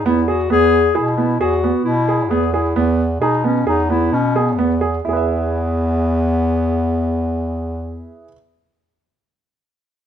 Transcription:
0.06 0.46 E2 medium
0.06 0.18 B3 medium
0.06 0.29 E4 medium
0.28 0.51 F#4 medium
0.28 0.40 G#4 medium
0.50 0.91 E2 medium
0.50 0.74 B3 medium
0.50 0.97 G#4 medium
0.95 1.36 B2 medium
0.95 1.16 E4 medium
0.95 1.07 G#4 medium
1.17 1.30 B3 medium
1.17 1.39 E4 medium
1.40 1.72 E2 medium
1.40 1.82 F#4 medium
1.40 1.53 G#4 medium
1.64 1.88 B3 medium
1.84 2.32 B2 medium
1.84 2.31 E4 medium
2.08 2.21 G#4 medium
2.29 2.71 E2 medium
2.29 2.43 B3 medium
2.29 2.52 G#4 medium
2.53 2.91 E4 medium
2.53 2.66 G#4 medium
2.76 3.16 E2 medium
2.76 3.00 B3 medium
3.20 3.61 B2 medium
3.20 3.43 D#4 medium
3.20 3.34 G#4 medium
3.44 3.56 B3 medium
3.44 3.66 C#4 medium
3.66 4.08 E2 medium
3.66 3.89 D#4 medium
3.66 3.79 G#4 medium
3.90 4.14 B3 medium
3.90 4.15 E4 medium
4.12 4.59 B2 medium
4.12 4.38 C#4 medium
4.36 4.82 B3 medium
4.36 4.48 G#4 medium
4.58 5.00 E2 medium
4.58 4.71 B3 medium
4.81 4.94 G#4 medium
5.05 8.13 E2 medium
5.05 8.13 B3 medium
5.05 8.23 E4 medium
5.09 8.27 G#4 medium
5.13 8.31 B4 medium
5.13 8.35 E5 medium

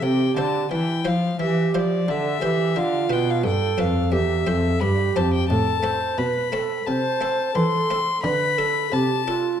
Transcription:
0.02 0.35 C3 soft
0.02 0.33 C3 soft
0.02 0.70 G4 medium
0.02 0.36 G5 medium
0.36 0.70 D3 soft
0.36 0.68 D3 soft
0.36 0.87 E4 soft
0.36 0.87 C5 soft
0.36 0.71 A5 medium
0.71 1.04 E3 soft
0.71 1.02 E3 soft
0.71 1.15 E4 medium
0.71 1.09 G5 medium
1.05 1.36 F3 soft
1.05 1.39 F3 soft
1.05 1.30 E4 soft
1.05 1.30 C5 soft
1.05 1.40 F5 medium
1.40 1.71 E3 soft
1.40 1.73 E3 medium
1.40 2.05 G4 medium
1.40 1.74 E5 medium
1.74 2.09 F3 soft
1.74 2.05 F3 soft
1.74 2.24 E4 soft
1.74 2.24 C5 soft
1.74 2.11 D5 medium
2.08 2.41 D3 medium
2.08 2.39 D3 soft
2.08 2.41 A4 soft
2.08 2.80 E5 medium
2.41 2.73 E3 soft
2.41 2.78 E3 medium
2.41 2.67 E4 soft
2.41 2.78 G4 soft
2.41 2.67 C5 soft
2.76 3.07 D3 soft
2.76 3.11 D3 medium
2.76 3.46 F4 medium
2.76 3.14 F5 medium
3.10 3.41 B2 soft
3.10 3.48 B2 medium
3.10 3.59 D4 soft
3.10 3.60 B4 soft
3.10 3.31 G5 medium
3.30 3.45 F5 medium
3.44 3.75 G2 soft
3.44 3.80 G2 soft
3.44 4.14 A4 medium
3.44 3.81 G5 medium
3.78 4.09 F2 soft
3.78 4.16 F2 soft
3.78 4.03 D4 soft
3.78 4.03 B4 soft
3.78 4.13 F5 medium
4.12 4.43 E2 soft
4.12 4.48 E2 medium
4.12 4.50 G4 medium
4.12 4.82 E5 medium
4.47 4.78 F2 soft
4.47 4.81 F2 medium
4.47 4.96 C4 soft
4.47 4.83 A4 medium
4.47 4.96 C5 soft
4.80 5.12 G2 soft
4.80 5.16 G2 medium
4.80 5.49 G4 medium
4.80 5.17 B5 medium
5.16 5.46 F2 soft
5.16 5.49 F2 medium
5.16 5.40 C4 soft
5.16 5.41 C5 soft
5.16 5.33 A5 medium
5.34 5.48 G5 medium
5.49 6.14 A2 soft
5.49 6.14 A2 medium
5.49 5.82 A4 medium
5.49 6.19 A5 medium
5.82 6.32 A3 soft
5.82 6.33 C4 soft
5.82 6.33 A4 soft
5.82 6.19 C5 medium
6.18 6.83 B2 soft
6.18 6.83 B2 medium
6.18 6.52 B4 medium
6.18 6.87 B5 medium
6.52 6.77 A3 soft
6.52 6.77 C4 soft
6.52 6.78 A4 soft
6.52 6.87 A4 medium
6.86 7.52 C3 medium
6.86 7.55 C5 medium
6.86 7.57 A5 medium
7.21 7.70 A3 soft
7.21 7.71 C4 soft
7.21 7.71 A4 soft
7.55 8.20 E3 soft
7.55 8.20 E3 medium
7.55 7.99 A4 medium
7.55 8.23 C6 medium
7.90 8.15 A3 soft
7.90 8.15 C4 soft
7.90 8.15 A4 soft
8.23 8.88 D3 medium
8.23 8.89 D3 soft
8.23 8.59 B4 medium
8.23 8.94 B5 medium
8.58 9.08 D4 soft
8.58 8.92 A4 medium
8.58 9.08 A4 soft
8.92 9.57 C3 medium
8.92 9.57 C3 soft
8.92 9.26 G4 medium
8.92 9.60 A5 medium
9.26 9.52 D4 soft
9.26 9.60 F4 medium
9.26 9.52 A4 soft

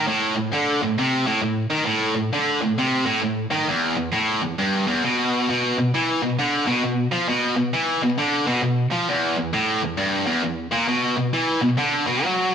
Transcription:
0.08 0.35 A2 medium
0.36 0.49 A2 medium
0.53 0.81 D3 loud
0.82 0.95 A2 medium
0.98 1.26 C3 loud
1.27 1.41 A2 loud
1.42 1.65 A2 medium
1.71 1.85 D#3 loud
1.86 2.14 A2 loud
2.15 2.29 A2 medium
2.33 2.61 D3 loud
2.61 2.74 A2 medium
2.78 3.06 C3 medium
3.06 3.22 A2 loud
3.23 3.46 A2 medium
3.51 3.67 D#3 loud
3.68 3.96 E2 medium
3.97 4.10 E2 medium
4.13 4.41 A2 loud
4.42 4.55 E2 medium
4.59 4.86 G2 loud
4.87 5.03 E2 loud
5.04 5.48 B2 loud
5.49 5.76 B2 loud
5.78 5.90 B2 medium
5.95 6.21 E3 loud
6.23 6.35 B2 medium
6.39 6.66 D3 loud
6.67 6.83 B2 loud
6.84 7.06 B2 medium
7.12 7.28 F3 medium
7.29 7.55 B2 loud
7.57 7.70 B2 medium
7.73 8.01 E3 loud
8.03 8.15 B2 medium
8.18 8.46 D3 loud
8.47 8.62 B2 loud
8.63 8.86 B2 medium
8.92 9.08 F3 loud
9.09 9.36 E2 loud
9.38 9.50 E2 medium
9.53 9.81 A2 loud
9.82 9.95 E2 medium
9.97 10.25 G2 loud
10.26 10.42 E2 loud
10.43 10.66 E2 medium
10.71 10.87 A#2 loud
10.88 11.16 B2 loud
11.17 11.30 B2 medium
11.33 11.61 E3 loud
11.62 11.75 B2 medium
11.78 12.06 D3 loud
12.07 12.25 B2 loud
12.25 12.55 F#3 loud

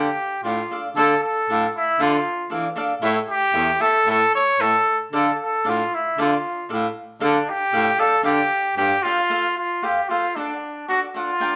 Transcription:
0.00 0.41 G4 medium
0.43 0.61 A2 medium
0.43 0.60 D4 soft
0.43 0.81 F4 medium
0.43 0.60 A4 soft
0.43 0.61 D5 medium
0.43 0.61 F5 medium
0.71 0.87 D4 soft
0.71 0.87 A4 medium
0.71 0.87 D5 medium
0.71 0.87 F5 medium
0.96 1.14 D3 loud
0.96 1.13 D4 medium
0.96 1.21 A4 loud
0.96 1.13 A4 medium
0.96 1.13 D5 medium
0.96 1.13 F5 medium
1.23 1.71 A4 medium
1.49 1.66 A2 medium
1.49 1.65 D4 medium
1.49 1.65 A4 medium
1.49 1.66 D5 medium
1.49 1.65 F5 medium
1.77 2.03 E4 medium
2.00 2.17 D3 loud
2.00 2.15 D4 medium
2.00 2.52 F4 medium
2.00 2.15 A4 medium
2.00 2.15 D5 medium
2.00 2.16 F5 medium
2.50 2.68 E3 medium
2.50 2.66 D4 medium
2.50 2.67 A4 medium
2.50 2.67 D5 medium
2.50 2.67 F5 medium
2.76 2.91 D4 medium
2.76 2.92 A4 medium
2.76 2.92 D5 medium
2.76 2.93 F5 medium
3.02 3.19 A2 loud
3.02 3.17 E4 medium
3.02 3.14 E4 medium
3.02 3.17 A4 medium
3.02 3.18 C#5 medium
3.02 3.18 E5 medium
3.29 3.83 G4 loud
3.53 3.71 E2 medium
3.53 3.69 E4 medium
3.53 3.70 A4 medium
3.53 3.70 C#5 medium
3.53 3.70 E5 medium
3.80 3.95 E4 medium
3.80 3.96 A4 medium
3.80 4.07 A4 loud
3.80 3.96 C#5 medium
3.80 3.96 E5 medium
4.06 4.23 A2 loud
4.06 4.22 E4 medium
4.06 4.23 A4 medium
4.06 4.23 C#5 medium
4.06 4.23 E5 medium
4.10 4.33 A4 loud
4.35 4.62 C#5 loud
4.59 4.76 A2 medium
4.59 4.76 E4 soft
4.59 4.76 A4 medium
4.59 5.00 A4 loud
4.59 4.76 C#5 medium
4.59 4.76 E5 medium
5.12 5.30 D3 loud
5.12 5.29 D4 medium
5.12 5.29 A4 medium
5.12 5.38 A4 medium
5.12 5.29 D5 medium
5.12 5.29 F5 medium
5.43 5.71 A4 medium
5.64 5.83 A2 medium
5.64 5.81 D4 medium
5.64 5.81 A4 medium
5.64 5.81 D5 medium
5.64 5.81 F5 medium
5.69 5.96 F4 medium
5.95 6.22 E4 medium
6.18 6.35 D3 loud
6.18 6.34 D4 medium
6.18 6.71 F4 medium
6.18 6.34 A4 medium
6.18 6.34 D5 medium
6.18 6.34 F5 medium
6.69 6.87 A2 medium
6.69 6.85 D4 medium
6.69 6.85 A4 medium
6.69 6.85 D5 medium
6.69 6.86 F5 medium
7.20 7.38 D3 loud
7.20 7.36 D4 medium
7.20 7.51 D4 medium
7.20 7.36 A4 medium
7.20 7.36 D5 medium
7.20 7.37 F5 medium
7.49 8.01 G4 loud
7.72 7.90 A2 loud
7.72 7.88 D4 medium
7.72 7.88 A4 medium
7.72 7.88 D5 medium
7.72 7.89 F5 medium
7.98 8.13 D4 medium
7.98 8.14 A4 medium
7.98 8.24 A4 loud
7.98 8.14 D5 medium
7.98 8.14 F5 medium
8.23 8.41 D3 loud
8.23 8.39 D4 medium
8.23 8.73 G4 loud
8.23 8.39 A4 medium
8.23 8.40 D5 medium
8.23 8.40 F5 medium
8.76 8.93 G2 medium
8.76 8.93 D4 medium
8.76 9.04 G4 loud
8.76 8.93 A4 medium
8.76 8.93 D5 medium
8.76 8.93 F5 medium
9.03 9.19 D4 medium
9.03 9.56 F4 loud
9.03 9.20 A4 medium
9.03 9.20 D5 medium
9.03 9.20 F5 medium
9.30 9.46 F4 medium
9.30 9.46 A4 medium
9.30 9.46 C5 medium
9.30 9.46 F5 medium
9.58 9.85 F4 medium
9.82 9.99 F4 medium
9.82 10.10 G4 medium
9.82 9.99 A4 soft
9.82 9.99 C5 soft
9.82 9.99 F5 medium
10.09 10.37 F4 medium
10.09 10.25 F4 medium
10.09 10.26 A4 medium
10.09 10.26 C5 medium
10.09 10.26 F5 medium
10.36 10.88 D4 medium
10.36 10.52 D4 medium
10.36 10.52 A4 medium
10.36 10.52 D5 medium
10.36 10.53 F#5 medium
10.88 11.04 D4 medium
10.88 11.00 F#4 medium
10.88 11.05 A4 medium
10.88 11.05 D5 medium
10.88 11.05 F#5 medium
11.14 11.30 D4 medium
11.14 11.56 F4 medium
11.14 11.30 A4 medium
11.14 11.30 D5 medium
11.14 11.31 F#5 medium
11.40 11.56 D4 medium
11.40 11.56 A#4 medium
11.40 11.56 D5 medium
11.40 11.56 G5 medium

